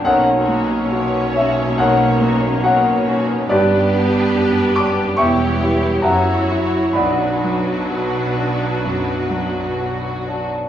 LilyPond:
<<
  \new Staff \with { instrumentName = "Grand piano" } { \time 4/4 \key b \minor \tempo 4 = 69 << { <ais' cis'' fis''>4. e''8 <ais' cis'' fis''>4 <ais' cis'' fis''>4 | <g' b' d''>4. d'''8 <e'' g'' cis'''>4 <e'' fis'' ais''>4 | <d'' fis'' b''>2.~ <d'' fis'' b''>8 r8 | } \\ { b,,8 ais8 fis'8 cis'8 b,,8 ais8 fis'8 cis'8 | g,8 b8 g'8 d'8 e,8 <e' g'>8 fis,8 <e' fis'>8 | b,,8 fis8 fis'8 d'8 fis,8 fis8 fis'8 d'8 | } >> }
  \new Staff \with { instrumentName = "Violin section" } { \time 4/4 \key b \minor << { cis''1 | b'2 cis''4 cis''4 | b'1 | } \\ { ais16 cis'16 fis'16 cis'16 ais16 cis'16 fis'16 cis'16 ais16 cis'16 fis'16 cis'16 ais16 cis'16 fis'16 cis'16 | g'2 g'4 fis'4 | fis'2.~ fis'8. r16 | } >> }
  \new Staff \with { instrumentName = "Viola section" } { \time 4/4 \key b \minor <ais cis'>1 | <b d'>2 <b e'>4 <fis e'>4 | <fis d'>1 | }
  \new Staff \with { instrumentName = "French horn section" } { \clef bass \time 4/4 \key b \minor <fis ais>1 | <g b>2 <g b>4 <fis e'>4 | <fis d'>2.~ <fis d'>8 r8 | }
  \new Staff \with { instrumentName = "Cello section" } { \clef bass \time 4/4 \key b \minor b,1 | g,4 fis,4 e,4 fis,4 | b,1 | }
  \new Staff \with { instrumentName = "Double bass section" } { \clef bass \time 4/4 \key b \minor b,,1 | g,,4 fis,,4 e,,4 fis,,4 | b,,1 | }
>>